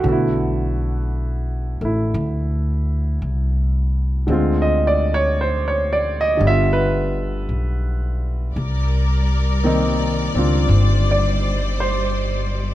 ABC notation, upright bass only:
X:1
M:4/4
L:1/8
Q:"Swing" 1/4=56
K:Bphr
V:1 name="Upright bass" clef=bass
B,,,3 A,,, D,,2 C,,2 | D,,4 G,,,2 B,,,2 | C,,3 ^C,, G,,,4 |]